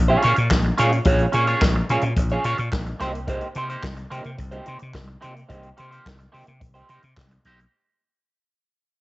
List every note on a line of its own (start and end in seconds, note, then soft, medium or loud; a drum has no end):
0.00 0.15 A#1 loud
0.08 0.21 C#4 medium
0.08 0.22 F4 medium
0.08 0.22 G#4 medium
0.08 0.23 C#5 medium
0.22 0.34 A#2 loud
0.22 0.37 C#4 medium
0.22 0.36 F4 medium
0.22 0.36 G#4 medium
0.22 0.35 C#5 medium
0.22 closed hi-hat medium
0.36 0.47 A#2 medium
0.36 muted clean electric guitar stroke soft
0.36 closed hi-hat soft
0.50 0.70 A#1 loud
0.50 muted clean electric guitar stroke soft
0.50 kick medium
0.50 snare loud
0.50 clap medium
0.65 muted clean electric guitar stroke soft
0.78 0.99 A#2 medium
0.78 0.97 C#4 medium
0.78 0.92 F4 medium
0.78 0.91 G#4 medium
0.78 0.91 C#5 medium
0.78 snare soft
0.78 closed hi-hat medium
0.92 muted clean electric guitar stroke medium
0.92 closed hi-hat soft
1.05 1.25 A#1 loud
1.05 1.24 C#4 medium
1.05 1.25 F4 loud
1.05 1.25 G#4 medium
1.05 1.25 C#5 loud
1.05 kick loud
1.05 closed hi-hat medium
1.18 closed hi-hat soft
1.32 1.53 A#2 loud
1.32 1.48 C#4 medium
1.32 1.47 F4 medium
1.32 1.47 G#4 medium
1.32 1.46 C#5 medium
1.32 closed hi-hat medium
1.47 1.63 C#4 medium
1.47 1.63 F4 medium
1.47 1.62 G#4 medium
1.47 1.62 C#5 medium
1.47 closed hi-hat soft
1.61 1.81 A#1 loud
1.61 kick loud
1.61 snare loud
1.61 clap medium
1.76 muted clean electric guitar stroke soft
1.89 1.99 A#2 loud
1.89 2.08 C#4 medium
1.89 2.04 F4 medium
1.89 2.04 G#4 medium
1.89 2.03 C#5 medium
1.89 closed hi-hat medium
2.01 2.13 A#2 medium
2.01 muted clean electric guitar stroke medium
2.01 closed hi-hat soft
2.16 2.36 A#1 loud
2.16 muted clean electric guitar stroke soft
2.16 kick loud
2.16 closed hi-hat loud
2.29 2.43 C#4 medium
2.29 2.44 F4 medium
2.29 2.44 G#4 medium
2.29 2.45 C#5 medium
2.29 closed hi-hat soft
2.44 2.54 A#2 loud
2.44 2.59 C#4 medium
2.44 2.58 F4 medium
2.44 2.58 G#4 medium
2.44 2.57 C#5 medium
2.44 closed hi-hat medium
2.58 2.69 A#2 loud
2.58 muted clean electric guitar stroke soft
2.58 closed hi-hat soft
2.72 2.92 A#1 medium
2.72 muted clean electric guitar stroke soft
2.72 kick loud
2.72 snare loud
2.72 clap medium
2.86 muted clean electric guitar stroke soft
2.86 closed hi-hat soft
3.00 3.39 C2 medium
3.00 3.19 A#3 medium
3.00 3.13 D#4 medium
3.00 3.13 G4 medium
3.00 3.12 C5 loud
3.00 snare soft
3.00 closed hi-hat medium
3.13 muted clean electric guitar stroke soft
3.13 closed hi-hat soft
3.27 3.46 A#3 medium
3.27 3.47 D#4 medium
3.27 3.47 G4 medium
3.27 3.47 C5 medium
3.27 kick loud
3.27 closed hi-hat medium
3.41 closed hi-hat soft
3.55 3.75 C3 loud
3.55 3.70 A#3 medium
3.55 3.70 D#4 medium
3.55 3.69 G4 medium
3.55 3.69 C5 medium
3.55 closed hi-hat medium
3.70 3.85 A#3 medium
3.70 3.85 D#4 medium
3.70 3.85 G4 medium
3.70 3.84 C5 medium
3.70 closed hi-hat soft
3.83 4.03 C2 loud
3.83 kick loud
3.83 snare loud
3.83 clap medium
3.97 muted clean electric guitar stroke medium
3.97 closed hi-hat soft
4.10 4.21 C3 medium
4.10 4.29 A#3 medium
4.10 4.24 D#4 medium
4.10 4.24 G4 medium
4.10 4.23 C5 medium
4.10 closed hi-hat medium
4.24 4.35 C3 medium
4.24 muted clean electric guitar stroke soft
4.24 closed hi-hat soft
4.38 4.59 C2 loud
4.38 muted clean electric guitar stroke soft
4.38 kick loud
4.38 closed hi-hat medium
4.52 4.65 A#3 medium
4.52 4.65 D#4 medium
4.52 4.66 G4 medium
4.52 4.67 C5 medium
4.52 closed hi-hat soft
4.66 4.77 C3 loud
4.66 4.81 A#3 medium
4.66 4.79 D#4 medium
4.66 4.79 G4 medium
4.66 4.78 C5 medium
4.66 closed hi-hat medium
4.79 4.92 C3 medium
4.79 muted clean electric guitar stroke medium
4.79 closed hi-hat soft
4.94 5.14 C2 loud
4.94 muted clean electric guitar stroke soft
4.94 kick loud
4.94 snare loud
4.94 clap medium
5.08 muted clean electric guitar stroke soft
5.21 5.43 C3 medium
5.21 5.40 A#3 medium
5.21 5.35 D#4 loud
5.21 5.34 G4 loud
5.21 5.34 C5 loud
5.21 closed hi-hat medium
5.35 muted clean electric guitar stroke soft
5.35 closed hi-hat soft
5.49 5.70 C2 loud
5.49 5.68 A#3 medium
5.49 5.68 D#4 medium
5.49 5.68 G4 medium
5.49 5.68 C5 medium
5.49 kick loud
5.49 closed hi-hat medium
5.63 closed hi-hat soft
5.77 5.98 C3 loud
5.77 5.92 A#3 medium
5.77 5.92 D#4 medium
5.77 5.91 G4 medium
5.77 5.90 C5 medium
5.77 closed hi-hat medium
5.91 6.07 A#3 medium
5.91 6.07 D#4 medium
5.91 6.06 G4 medium
5.91 6.06 C5 medium
5.91 closed hi-hat soft
6.06 6.25 C2 loud
6.06 kick loud
6.06 snare loud
6.06 clap medium
6.19 muted clean electric guitar stroke medium
6.19 closed hi-hat soft
6.32 6.43 C3 medium
6.32 6.51 A#3 medium
6.32 6.47 D#4 medium
6.32 6.46 G4 medium
6.32 6.45 C5 medium
6.32 open hi-hat medium
6.47 6.63 C3 medium
6.47 muted clean electric guitar stroke soft
6.47 closed hi-hat medium
6.60 6.81 C2 loud
6.60 muted clean electric guitar stroke medium
6.60 kick loud
6.60 closed hi-hat medium
6.74 6.87 A#3 medium
6.74 6.88 D#4 medium
6.74 6.88 G4 medium
6.74 6.89 C5 medium
6.74 closed hi-hat soft
6.88 6.99 C3 loud
6.88 7.03 A#3 medium
6.88 7.03 D#4 medium
6.88 7.03 G4 medium
6.88 7.02 C5 medium
6.88 closed hi-hat medium
7.03 7.13 C3 loud
7.03 muted clean electric guitar stroke soft
7.03 closed hi-hat soft
7.16 7.37 C2 medium
7.16 muted clean electric guitar stroke soft
7.16 kick loud
7.16 snare loud
7.16 clap medium
7.31 muted clean electric guitar stroke soft
7.31 closed hi-hat soft
7.45 7.64 B1 medium
7.45 7.63 A#3 medium
7.45 7.60 D#4 medium
7.45 7.60 G4 medium
7.45 7.59 C5 medium
7.45 closed hi-hat medium
7.60 muted clean electric guitar stroke soft
7.60 closed hi-hat soft